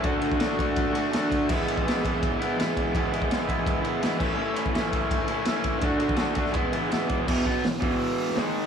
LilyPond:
<<
  \new Staff \with { instrumentName = "Overdriven electric guitar" } { \time 4/4 \key e \mixolydian \tempo 4 = 166 <d a d' fis'>8 <a d' fis'>8 <d a d' fis'>8 <a d' fis'>4 <a d' fis'>8 <d a d' fis'>4 | <e gis b e'>8 <gis b e'>8 <e gis b e'>8 <gis b e'>4 <gis b e'>8 <e gis b e'>4 | <e gis b e'>8 <gis b e'>8 <e gis b e'>8 <gis b e'>4 <gis b e'>8 <e gis b e'>8 <a, e a cis' e'>8 | <a, e a cis' e'>8 <a cis' e'>8 <a, e a cis' e'>8 <a cis' e'>4 <a cis' e'>8 <e a cis' e'>4 |
<d a d' fis'>8 <a d' fis'>8 <d a d' fis'>8 <a d' fis'>8 <e gis b e'>8 <gis b e'>8 <e gis b e'>4 | <e, b, e>8 <b, fis b>8 <e, b,>8 <e, b, e>4. <gis, dis gis>4 | }
  \new DrumStaff \with { instrumentName = "Drums" } \drummode { \time 4/4 <bd cymr>8 cymr16 bd16 <cymr sn>8 <bd cymr>8 <bd cymr>8 cymr8 <cymr sn>8 <bd cymr>8 | <cymc bd>8 cymr16 bd16 <cymr sn>8 <bd cymr>8 <bd cymr>8 cymr8 <cymr sn>8 <bd cymr>8 | <bd cymr>8 cymr16 bd16 <cymr sn>8 <bd cymr>8 <bd cymr>8 cymr8 <cymr sn>8 <cymc bd>8 | r8 cymr16 bd16 <cymr sn>8 <bd cymr>8 <bd cymr>8 cymr8 <cymr sn>8 <bd cymr>8 |
<bd cymr>8 cymr16 bd16 <cymr sn>8 <bd cymr>16 sn16 <bd cymr>8 cymr8 <cymr sn>8 <bd cymr>8 | <cymc bd>8 <hho bd>8 <hho sn>8 <hho bd>8 hho8 hho16 sn16 <hho sn>8 hho8 | }
>>